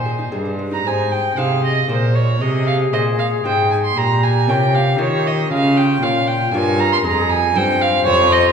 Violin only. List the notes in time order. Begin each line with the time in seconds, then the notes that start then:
Already playing: C5
0.73 A#5
0.87 G#5
1.12 G5
1.38 F5
1.64 D#5
1.90 C5
2.16 C#5
2.42 D#5
2.67 F5
2.93 D#5
3.19 F5
3.45 G5
3.71 G#5
3.85 C6
3.97 A#5
4.23 G#5
4.49 G5
4.75 F5
5.01 C#5
5.27 D#5
5.52 F5
5.77 G5
6.03 F5
6.27 G5
6.54 G#5
6.80 A#5
6.93 C6
7.05 A#5
7.30 G#5
7.56 G5
7.81 F5
8.06 C#5
8.32 D#5